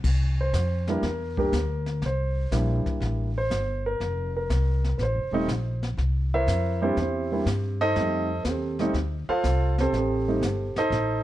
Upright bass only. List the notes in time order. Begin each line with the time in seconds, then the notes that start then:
0.04 C2
0.53 F2
1.03 E2
1.52 D2
2.02 C2
2.51 A#1
2.86 muted upright bass stroke
3.00 A1
3.50 G1
4.00 F1
4.50 C2
4.99 A1
5.15 F1
5.31 D#1
5.48 A#1
5.97 C2
6.47 F2
6.96 E2
7.46 G2
7.96 F2
8.45 D#2
8.93 D2
9.28 muted upright bass stroke
9.44 C2
9.92 A1
10.41 G1
10.76 muted upright bass stroke
10.90 A1